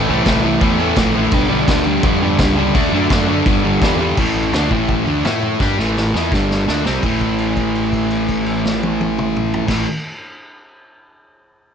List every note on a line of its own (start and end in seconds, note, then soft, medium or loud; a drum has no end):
0.09 0.24 C2 loud
0.09 0.25 A2 medium
0.09 0.26 E3 medium
0.09 0.27 A3 loud
0.26 0.56 C2 loud
0.26 0.43 A2 medium
0.26 0.44 E3 medium
0.26 0.45 A3 loud
0.26 kick loud
0.26 snare loud
0.26 crash medium
0.44 0.60 A2 loud
0.44 0.61 E3 medium
0.44 0.62 A3 loud
0.61 0.92 E2 loud
0.61 0.78 A2 loud
0.61 0.78 E3 loud
0.61 0.79 A3 loud
0.61 kick loud
0.61 crash medium
0.79 0.95 A2 medium
0.79 0.96 E3 loud
0.79 0.97 A3 loud
0.96 1.27 A#1 medium
0.96 1.13 A2 loud
0.96 1.14 E3 medium
0.96 1.15 A3 loud
0.96 kick loud
0.96 snare loud
0.96 crash medium
1.14 1.31 A2 medium
1.14 1.32 E3 loud
1.14 1.32 A3 loud
1.31 1.62 B1 loud
1.31 1.49 G2 medium
1.31 1.49 D3 loud
1.31 1.50 G3 loud
1.31 kick loud
1.31 crash medium
1.50 1.66 G2 medium
1.50 1.67 D3 loud
1.50 1.68 G3 loud
1.67 1.98 D2 loud
1.67 1.85 G2 medium
1.67 1.85 D3 loud
1.67 1.87 G3 medium
1.67 kick loud
1.67 snare loud
1.67 crash medium
1.86 2.03 G2 loud
1.86 2.04 D3 loud
1.86 2.05 G3 loud
2.03 2.33 F2 medium
2.03 2.20 G2 loud
2.03 2.22 D3 loud
2.03 2.22 G3 loud
2.03 kick loud
2.03 crash medium
2.21 2.38 G2 loud
2.21 2.39 D3 loud
2.21 2.39 G3 loud
2.39 2.69 C#2 loud
2.39 2.55 G2 loud
2.39 2.57 D3 loud
2.39 2.57 G3 loud
2.39 kick loud
2.39 snare loud
2.39 crash medium
2.57 2.73 G2 medium
2.57 2.73 D3 medium
2.57 2.74 G3 loud
2.74 2.89 D2 loud
2.74 2.92 D3 loud
2.74 2.92 A3 loud
2.74 2.93 D4 loud
2.74 kick loud
2.74 crash medium
2.91 3.07 F#2 medium
2.91 3.09 D3 medium
2.91 3.10 A3 medium
2.91 3.11 D4 loud
3.10 3.41 F#2 loud
3.10 3.26 D3 medium
3.10 3.27 A3 medium
3.10 3.28 D4 medium
3.10 kick loud
3.10 snare loud
3.10 crash medium
3.27 3.44 D3 medium
3.27 3.45 A3 loud
3.27 3.45 D4 loud
3.46 3.76 G1 loud
3.46 3.63 G2 medium
3.46 3.63 D3 loud
3.46 3.64 G3 loud
3.46 kick loud
3.46 crash medium
3.64 3.81 G2 medium
3.64 3.82 D3 loud
3.64 3.82 G3 loud
3.81 4.11 E2 loud
3.81 3.97 G2 medium
3.81 3.99 D3 medium
3.81 3.99 G3 loud
3.81 kick loud
3.81 snare loud
3.81 crash medium
3.99 4.15 G2 loud
3.99 4.16 D3 loud
3.99 4.16 G3 loud
4.17 4.50 A1 medium
4.17 4.52 A2 medium
4.17 4.52 E3 loud
4.17 4.53 A3 medium
4.17 kick loud
4.17 floor tom medium
4.17 crash loud
4.36 floor tom medium
4.52 4.69 D2 medium
4.52 4.70 D3 medium
4.52 4.70 A3 medium
4.52 4.71 D4 medium
4.52 snare loud
4.52 floor tom medium
4.70 5.04 A1 medium
4.70 5.05 A2 medium
4.70 5.06 E3 medium
4.70 5.05 A3 loud
4.70 kick medium
4.70 floor tom medium
4.88 kick medium
4.88 floor tom medium
5.06 5.23 D2 medium
5.06 5.23 D3 medium
5.06 5.23 A3 medium
5.06 5.24 D4 medium
5.06 floor tom medium
5.24 5.58 A2 medium
5.24 5.59 A3 medium
5.24 5.60 E4 loud
5.24 5.60 A4 loud
5.24 snare loud
5.24 floor tom medium
5.43 floor tom medium
5.60 5.77 G2 medium
5.60 5.77 G3 medium
5.60 5.78 D4 medium
5.60 5.78 G4 loud
5.60 kick loud
5.60 snare medium
5.77 6.11 A1 medium
5.77 6.13 A2 medium
5.77 6.13 E3 medium
5.77 6.14 A3 medium
5.77 snare medium
5.97 snare medium
6.14 6.30 E2 medium
6.14 6.31 E3 medium
6.14 6.32 B3 loud
6.14 6.32 E4 loud
6.14 snare medium
6.31 6.65 G1 medium
6.31 6.67 G2 medium
6.31 6.66 D3 loud
6.31 6.67 G3 loud
6.31 kick loud
6.31 snare medium
6.51 snare medium
6.67 6.85 D2 loud
6.67 6.84 D3 loud
6.67 6.85 A3 medium
6.67 6.85 D4 loud
6.67 snare medium
6.85 7.02 C2 medium
6.85 7.02 C3 medium
6.85 7.03 G3 medium
6.85 7.03 C4 medium
6.85 snare medium
7.02 9.60 A1 medium
7.02 9.67 A2 medium
7.02 9.69 E3 medium
7.02 9.71 A3 medium
7.02 kick loud
7.02 crash medium
7.21 kick medium
7.21 crash soft
7.39 crash soft
7.57 kick medium
7.57 crash soft
7.75 crash soft
7.93 kick medium
7.93 crash soft
8.10 crash soft
8.29 kick medium
8.29 crash medium
8.46 crash soft
8.66 snare medium
8.83 high tom medium
9.01 high tom medium
9.19 mid tom medium
9.36 mid tom medium
9.54 floor tom medium
9.68 9.84 A1 medium
9.68 9.84 A2 medium
9.68 9.85 E3 medium
9.68 kick loud
9.68 snare medium
9.68 crash medium
9.72 9.86 A3 medium